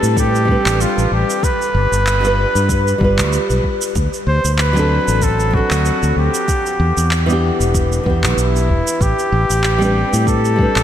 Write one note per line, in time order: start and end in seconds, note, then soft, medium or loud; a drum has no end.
0.00 0.55 A2 medium
0.00 0.43 G3 medium
0.00 0.44 C4 medium
0.00 0.46 D4 medium
0.00 0.18 A4 loud
0.00 0.47 B4 loud
0.00 shaker medium
0.17 0.83 G4 medium
0.17 kick loud
0.17 shaker medium
0.35 shaker soft
0.45 1.40 G3 medium
0.45 1.41 C4 medium
0.45 1.42 D4 medium
0.45 kick loud
0.51 1.43 B4 medium
0.66 0.84 A1 medium
0.66 clap medium
0.66 shaker medium
0.81 1.12 F4 medium
0.81 shaker medium
0.98 1.07 A1 medium
0.98 shaker soft
1.12 1.23 A1 medium
1.12 1.45 G4 medium
1.30 shaker medium
1.43 3.33 B4 medium
1.43 kick loud
1.43 shaker soft
1.62 shaker soft
1.75 1.86 G1 medium
1.92 2.45 G1 medium
1.92 shaker medium
2.07 clap medium
2.07 shaker medium
2.21 2.96 G3 medium
2.21 2.97 D4 medium
2.21 shaker soft
2.25 2.98 F4 medium
2.25 2.99 B4 medium
2.55 2.93 G2 medium
2.55 shaker medium
2.69 kick loud
2.69 shaker medium
2.88 shaker soft
2.98 3.20 G1 medium
2.98 3.93 G3 medium
2.98 3.94 D4 medium
2.98 kick loud
3.02 3.95 F4 medium
3.02 3.96 B4 medium
3.18 3.37 D2 medium
3.18 clap medium
3.18 shaker medium
3.33 shaker medium
3.50 3.59 B1 medium
3.50 shaker soft
3.64 kick medium
3.82 shaker medium
3.95 4.07 D2 medium
3.95 kick loud
3.95 shaker medium
4.13 shaker soft
4.27 4.38 D2 medium
4.27 4.54 C5 loud
4.45 4.97 D2 medium
4.45 shaker medium
4.54 4.62 C5 medium
4.58 5.25 B4 loud
4.58 clap medium
4.58 shaker medium
4.73 5.49 F#3 medium
4.73 5.50 C4 medium
4.73 shaker soft
4.77 5.51 D4 medium
4.77 5.52 A4 loud
5.08 5.61 A1 medium
5.08 shaker medium
5.22 5.56 A4 loud
5.22 kick loud
5.22 shaker medium
5.40 shaker soft
5.51 6.45 F#3 medium
5.51 6.46 C4 medium
5.51 6.17 F#4 loud
5.51 kick loud
5.55 6.47 D4 medium
5.55 6.48 A4 medium
5.71 5.90 D2 medium
5.71 clap medium
5.71 shaker medium
5.85 shaker medium
6.03 6.12 D2 medium
6.03 shaker soft
6.17 6.28 D2 medium
6.17 7.40 G4 medium
6.35 shaker medium
6.48 kick loud
6.48 shaker medium
6.66 shaker soft
6.80 6.91 E2 medium
6.97 7.50 E2 medium
6.97 shaker medium
7.11 clap medium
7.11 shaker medium
7.26 8.02 E3 medium
7.26 8.03 B3 medium
7.26 8.04 D4 medium
7.26 shaker soft
7.32 8.05 G4 loud
7.60 7.98 E1 medium
7.60 shaker medium
7.75 kick loud
7.75 shaker medium
7.92 shaker soft
8.04 8.25 E2 medium
8.04 8.98 E3 medium
8.04 8.99 B3 medium
8.04 kick loud
8.08 9.00 D4 medium
8.08 9.01 G4 medium
8.23 8.37 B1 medium
8.23 clap medium
8.23 shaker medium
8.37 8.71 B1 medium
8.37 9.03 E4 medium
8.37 shaker medium
8.56 shaker soft
8.69 8.80 E1 medium
8.69 kick medium
8.88 shaker medium
9.01 9.12 A1 medium
9.01 10.28 G4 medium
9.01 kick loud
9.01 shaker medium
9.19 shaker soft
9.32 9.44 A1 medium
9.50 10.03 A1 medium
9.50 shaker medium
9.64 clap medium
9.64 shaker soft
9.78 10.54 G3 medium
9.78 10.55 C4 medium
9.78 shaker soft
9.82 10.56 D4 medium
9.82 10.57 B4 medium
10.13 10.66 A2 medium
10.13 shaker medium
10.27 10.83 A4 loud
10.27 kick loud
10.27 shaker medium
10.45 shaker soft
10.56 10.83 G3 medium
10.56 10.83 C4 medium
10.56 kick loud
10.60 10.83 D4 medium
10.60 10.83 B4 medium
10.76 10.83 A1 medium
10.76 clap medium
10.76 shaker medium